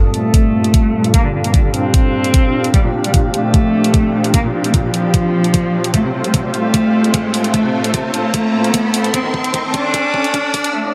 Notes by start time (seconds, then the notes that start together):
Already playing: G2 A#2 G3 C4 D4 F4 G4 A4 F5, riser
0.04 G2
0.14 A3, closed hi-hat
0.34 kick, closed hi-hat
0.64 closed hi-hat
0.74 kick, closed hi-hat
1.04 closed hi-hat
1.14 A#3, kick, closed hi-hat
1.24 D3
1.34 D3
1.44 A#3, closed hi-hat
1.54 D3, kick, closed hi-hat
1.64 D3
1.74 C4, closed hi-hat
1.94 kick, closed hi-hat
2.24 closed hi-hat
2.34 kick, closed hi-hat
2.64 closed hi-hat
2.74 A#2 F3 G3 C4 D4 G4, kick, closed hi-hat
2.84 A#2
2.94 A#2
3.04 G3, closed hi-hat
3.14 A#2, kick, closed hi-hat
3.24 A#2
3.34 A3, closed hi-hat
3.54 kick, closed hi-hat
3.84 closed hi-hat
3.94 kick, closed hi-hat
4.24 closed hi-hat
4.34 A#3, kick, closed hi-hat
4.44 A#2
4.54 A#2
4.64 A3, closed hi-hat
4.74 A#2, kick, closed hi-hat
4.84 A#2
4.94 F3, closed hi-hat
5.14 kick, closed hi-hat
5.44 closed hi-hat
5.54 kick, closed hi-hat
5.84 closed hi-hat
5.94 A2 A3 C4 F4 C5, kick, closed hi-hat
6.00 C3 C4
6.14 C3
6.24 A3, closed hi-hat
6.34 C3 A4, kick, closed hi-hat
6.44 C3
6.50 A3 A5, closed hi-hat
6.74 kick, closed hi-hat
7.04 closed hi-hat
7.14 kick, closed hi-hat
7.34 open hi-hat
7.44 closed hi-hat
7.54 A3, kick, closed hi-hat
7.64 C3
7.74 C3
7.84 A3, closed hi-hat
7.94 C3, kick, closed hi-hat
8.04 C3
8.14 A3, closed hi-hat
8.34 kick, closed hi-hat
8.64 closed hi-hat
8.74 kick, closed hi-hat
8.94 open hi-hat
9.04 closed hi-hat
9.14 D#3 C4 C5, kick, closed hi-hat
9.24 D#3
9.34 D#3, kick
9.44 C4, closed hi-hat
9.54 D#3, kick, closed hi-hat
9.64 D#3
9.74 D4, kick, closed hi-hat
9.94 kick, closed hi-hat
10.14 kick
10.24 closed hi-hat
10.34 kick, closed hi-hat
10.54 kick, open hi-hat
10.64 closed hi-hat
10.74 A3
10.84 A2